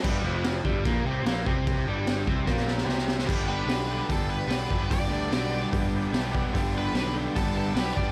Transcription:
<<
  \new Staff \with { instrumentName = "Lead electric guitar" } { \time 4/4 \key c \major \tempo 4 = 148 r1 | r1 | \key g \major r8 b'4. a'8 b'4. | d''2 r2 |
r8 b'4 r8 a'8 a'8 b'8 d''8 | }
  \new Staff \with { instrumentName = "Transistor combo organ" } { \time 4/4 \key c \major <g' b' d''>8 <g' b' d''>8 <g' b' d''>8 <g' b' e''>8 <g' b' d''>8 <g' b' d''>8 <g' b' e''>8 <g' b' d''>8 | <g' b' d''>8 <g' b' d''>8 <g' b' d''>8 <g' b' e''>8 <g' b' d''>8 <g' b' e''>8 <g' b' d''>8 <g' b' e''>8 | \key g \major <g' b' d''>8 <g' b' d''>8 <g' b' d''>8 <g' b' d''>8 <g' b' d''>8 <g' b' d''>8 <g' b' e''>8 <g' b' e''>8 | <g' b' d''>8 <g' b' d''>8 <g' b' e''>8 <g' b' d''>8 <g' b' d''>8 <g' b' d''>8 <g' b' d''>8 <g' b' d'' fis''>8 |
<g' b' e''>8 <g' b' d''>8 <g' b' d''>8 <g' b' e''>8 <g' b' d''>8 <g' b' e''>8 <g' b' e''>8 <g' b' d''>8 | }
  \new Staff \with { instrumentName = "Overdriven electric guitar" } { \time 4/4 \key c \major <g, g>8 <f, f>4 <g, g>8 <bes, bes>8 <c c'>8 <bes, bes>8 <c c'>8~ | <c c'>8 <g, g>4 <c c'>8 <bes, bes>4 <c c'>4 | \key g \major <g, d g b d' g'>8 <g b d' g'>8 <g, d g b d' g'>8 <g b d' g'>4. <g b d' g'>8 <g b d' g'>8 | <g, d g b d' g'>8 <g b d' g'>8 <g, d g b d' g'>8 <g b d' g'>4. <g b d' g'>8 <g b d' g'>8 |
<g, d g b d' g'>8 <g b d' g'>8 <g, d g b d' g'>8 <g b d' g'>4. <g b d' g'>8 <g b d' g'>8 | }
  \new Staff \with { instrumentName = "Picked electric bass" } { \clef bass \time 4/4 \key c \major g,,8 f,,4 g,,8 bes,,8 c,8 bes,,8 c,8~ | c,8 g,,4 c,8 bes,,4 c,4 | \key g \major g,,4 b,,4 g,,4 b,,8 g,,8 | g,,8 d,8 b,,4 g,,4 b,,4 |
g,,4 b,,4 g,,4 b,,8 g,,8 | }
  \new DrumStaff \with { instrumentName = "Drums" } \drummode { \time 4/4 <cymc bd>4 <cymc sn>8 bd8 <cymc bd>4 <cymc sn>8 bd8 | <cymc bd>4 <cymc sn>8 bd8 <bd sn>16 sn16 sn16 sn16 sn16 sn16 sn16 sn16 | <cymc bd>4 <hho sn>4 <hho bd>4 <hho sn>8 bd8 | <hho bd>4 <hho sn>4 <hho bd>4 <hho sn>8 bd8 |
<hho bd>4 <hho sn>4 <hho bd>4 <hho sn>8 bd8 | }
>>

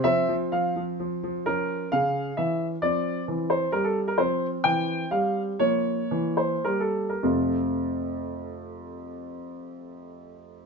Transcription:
<<
  \new Staff \with { instrumentName = "Grand piano" } { \time 3/4 \key f \major \tempo 4 = 126 << { e''4 f''4 r4 | bes'4 f''4 e''4 | d''4. c''8 bes'16 a'8 bes'16 | c''4 g''4 f''4 |
des''4. c''8 bes'16 a'8 bes'16 | <f, c a c' f'>2.~ | <f, c a c' f'>2. | } \\ { <c' c''>2. | des'2. | c'2. | c'2. |
bes2. | r2. | r2. | } >> }
  \new Staff \with { instrumentName = "Grand piano" } { \clef bass \time 3/4 \key f \major f8 f8 f8 f8 f8 f8 | f4 des4 e4 | f4 e4 g4 | f4 e4 g4 |
f4 e4 g4 | r2. | r2. | }
>>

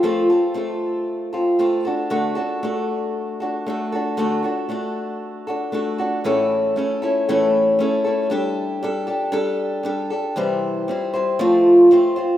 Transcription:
\new Staff \with { instrumentName = "Steel-string acoustic guitar" } { \time 4/4 \key d \mixolydian \tempo 4 = 116 <f a c' f' a'>8 <c' f' a'>8 <a c' f' a'>4. <c' f' a'>8 <a c' f' a'>8 <d' fis' a'>8 | <d a d' fis' a'>8 <d' fis' a'>8 <a d' fis' a'>4. <d' fis' a'>8 <a d' fis' a'>8 <d' fis' a'>8 | <d a d' fis' a'>8 <d' fis' a'>8 <a d' fis' a'>4. <d' fis' a'>8 <a d' fis' a'>8 <d' fis' a'>8 | <a, e a cis' e' a'>4 <a cis' e' a'>8 <a cis' e' a'>8 <a, e a cis' e' a'>4 <a cis' e' a'>8 <a cis' e' a'>8 |
<g d' g' a'>4 <g d' g' a'>8 <d' g' a'>8 <g d' g' a'>4 <g d' g' a'>8 <d' g' a'>8 | <c e g c' e' c''>4 <g c' e' c''>8 <g c' e' c''>8 <f a c' f' c''>4 <a c' f' c''>8 <c' f' c''>8 | }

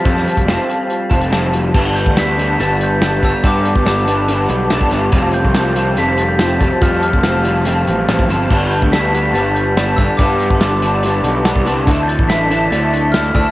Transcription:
<<
  \new Staff \with { instrumentName = "Glockenspiel" } { \time 4/4 \key g \mixolydian \tempo 4 = 142 g'''4. r2 r8 | r8 g'''8 b'''4 a'''8 g'''4 e'''8 | d'''4 d'''2~ d'''8 r8 | r8 g'''4. b'''8 a'''16 g'''8. a'''8 |
f'''8 f'''2. r8 | r8 g'''8 b'''4 a'''8 g'''4 e'''8 | \tuplet 3/2 { d'''4~ d'''16 c'''16 } d'''2~ d'''8 r8 | r16. g'''32 a'''8 b'''4 a'''8 a'''8 f'''8 e'''8 | }
  \new Staff \with { instrumentName = "Clean electric guitar" } { \time 4/4 \key g \mixolydian <f g c' f' a'>8 <c' f' a'>8 <g c' f' a'>4. <c' f' a'>8 <f g c' f' a'>8 <c' f' a'>8 | <g b d' a'>4 <g b d' a'>8 <g b d' a'>8 <g b d' a'>4 <g b d' a'>8 <g b d' a'>8 | <g b d' a'>4 <g b d' a'>8 <g b d' a'>8 <g b d' a'>4 <g b d' a'>8 <g b d' a'>8 | <f g c' f' a'>4 <f g c' f' a'>8 <f g c' f' a'>8 <f g c' f' a'>4 <f g c' f' a'>8 <f g c' f' a'>8 |
<f g c' f' a'>4 <f g c' f' a'>8 <f g c' f' a'>8 <f g c' f' a'>4 <f g c' f' a'>8 <f g c' f' a'>8 | <g b d' a'>4 <g b d' a'>8 <g b d' a'>8 <g b d' a'>4 <g b d' a'>8 <g b d' a'>8 | <g b d' a'>4 <g b d' a'>8 <g b d' a'>8 <g b d' a'>4 <g b d' a'>8 <g b d' a'>8 | <d d' e' a'>4 <d d' e' a'>8 <d d' e' a'>8 <d d' e' a'>4 <d d' e' a'>8 <d d' e' a'>8 | }
  \new Staff \with { instrumentName = "Picked electric bass" } { \clef bass \time 4/4 \key g \mixolydian f,8 r16 f,,8 r4 r16 f,,4. | g,,8. d,4~ d,16 g,,4. g,,16 r16 | g,8. g,,4.~ g,,16 b,,8. g,,8. | f,,8. c,4~ c,16 f,,4. f,,16 r16 |
f,8. f,,4.~ f,,16 a,,8 a,,8 g,,8 | g,,8. d,4~ d,16 g,,4. g,,16 r16 | g,8. g,,4.~ g,,16 b,,8. c,8. | d,8. a,,4~ a,,16 d,4. d,16 r16 | }
  \new DrumStaff \with { instrumentName = "Drums" } \drummode { \time 4/4 <hh bd>16 sn16 hh16 <hh bd>16 <hh sn>8 hh8 hh8 <hh bd>16 hh16 <hh sn>8 hh8 | <cymc bd>8 hh16 bd16 <hh sn>8 hh8 hh8 hh8 <hh sn>8 <hh bd>8 | <hh bd>8 hh16 bd16 <hh sn>8 hh8 hh8 hh8 <hh sn>16 bd16 <hh sn>8 | <hh bd>8 hh16 bd16 <hh sn>8 hh8 hh8 hh8 <hh sn>8 <hh bd>8 |
<hh bd>8 hh16 bd16 <hh sn>8 hh8 hh8 hh8 <hh sn>16 bd16 hh8 | <cymc bd>8 hh16 bd16 <hh sn>8 hh8 hh8 hh8 <hh sn>8 <hh bd>8 | <hh bd>8 hh16 bd16 <hh sn>8 hh8 hh8 hh8 <hh sn>16 bd16 <hh sn>8 | <hh bd>8 hh16 bd16 <hh sn>8 hh8 hh8 hh8 <hh sn>8 <hh bd>8 | }
>>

